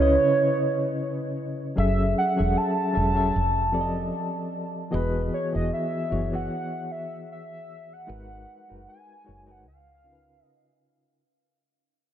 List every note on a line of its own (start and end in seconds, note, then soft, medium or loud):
0.00 0.16 C#2 medium
0.00 1.77 C#3 medium
0.00 1.77 C#4 medium
0.00 1.78 E4 medium
0.00 1.78 B4 medium
0.00 1.33 C#5 loud
0.00 0.02 D#5 medium
0.00 1.22 D#5 medium
1.76 2.13 F#1 loud
1.76 2.21 F#3 medium
1.76 2.22 C#4 medium
1.76 2.22 G#4 medium
1.76 2.23 A4 medium
1.76 2.23 E5 medium
1.76 2.14 E5 loud
2.18 2.59 F#5 medium
2.36 2.55 E1 medium
2.36 2.81 F#3 medium
2.36 2.81 C#4 medium
2.36 2.82 G#4 medium
2.36 2.82 A4 medium
2.36 2.82 E5 medium
2.57 4.53 A5 loud
2.93 3.10 F#3 medium
2.93 3.10 C#4 medium
2.93 3.11 G#4 medium
2.93 3.11 A4 medium
2.93 3.11 E5 medium
2.97 3.32 E1 medium
3.14 3.32 F#3 medium
3.14 3.33 C#4 medium
3.14 3.33 G#4 medium
3.14 3.33 A4 medium
3.14 3.34 E5 medium
3.36 4.10 F1 medium
3.72 4.64 F3 medium
3.72 4.65 C4 medium
3.72 4.65 G4 medium
3.72 4.65 A4 medium
3.72 3.81 D5 medium
3.81 4.69 D#5 medium
4.91 5.29 E1 loud
4.91 5.37 E3 medium
4.91 5.37 B3 medium
4.91 5.37 F#4 medium
4.91 5.38 G#4 medium
4.91 5.30 B4 medium
4.91 5.38 D#5 medium
5.34 5.53 C#5 medium
5.52 5.70 E1 medium
5.52 5.97 E3 medium
5.52 5.98 B3 medium
5.52 5.98 F#4 medium
5.52 5.98 G#4 medium
5.52 5.98 D#5 medium
5.52 5.71 D#5 medium
5.73 6.29 E5 medium
6.10 6.47 F#1 medium
6.10 6.27 E3 medium
6.10 6.27 B3 medium
6.10 6.27 F#4 medium
6.10 6.27 G#4 medium
6.10 6.28 C#5 medium
6.32 7.52 E3 medium
6.32 7.53 B3 medium
6.32 7.53 F#4 medium
6.32 7.53 G#4 medium
6.32 7.54 E5 medium
6.32 6.93 F#5 medium
6.92 7.30 E5 medium
7.32 7.95 E5 loud
7.93 8.88 F#5 loud
8.07 8.45 G#1 medium
8.07 8.53 G#3 medium
8.07 8.53 D#4 medium
8.07 8.53 F#4 medium
8.07 8.54 A#4 medium
8.07 8.54 B4 medium
8.68 8.86 F#1 medium
8.68 9.13 G#3 medium
8.68 9.13 D#4 medium
8.68 9.13 F#4 medium
8.68 9.14 A#4 medium
8.68 9.14 B4 medium
8.89 9.53 G#5 loud
9.24 9.42 G#3 medium
9.24 9.42 D#4 medium
9.24 9.42 F#4 medium
9.24 9.43 A#4 soft
9.24 9.43 C#5 medium
9.28 9.67 F#1 medium
9.46 9.64 G#3 medium
9.46 9.64 D#4 soft
9.46 9.65 F#4 soft
9.46 9.65 A#4 medium
9.46 9.65 B4 medium
9.51 9.67 F#5 medium
9.67 10.41 C#2 medium
9.67 10.46 F5 medium
10.04 10.96 C#3 medium
10.04 10.96 C#4 medium
10.04 10.96 D#4 medium
10.04 10.97 F4 medium
10.04 10.12 A#4 soft
10.13 11.00 B4 medium
10.46 10.81 D#5 medium